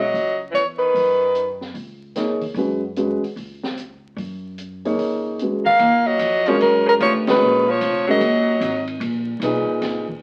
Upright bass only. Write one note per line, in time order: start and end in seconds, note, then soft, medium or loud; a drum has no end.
0.00 0.11 E1 medium
0.14 0.51 C#2 medium
0.53 0.92 E2 medium
0.94 1.71 F#2 medium
1.74 2.52 C#2 medium
2.54 3.18 F#2 medium
3.23 muted upright bass stroke soft
3.36 4.13 C#2 medium
4.16 4.94 F#2 medium
4.98 5.75 C#2 medium
5.79 6.18 D#2 medium
6.19 6.58 F2 medium
6.60 6.99 F#2 medium
7.00 7.39 C#2 medium
7.41 7.80 A#1 medium
7.81 8.20 F1 medium
8.20 8.60 F#1 medium
8.60 8.99 G#1 medium
9.00 9.39 A#1 medium
9.40 9.65 B1 medium
9.67 muted upright bass stroke soft
9.81 10.20 C#2 medium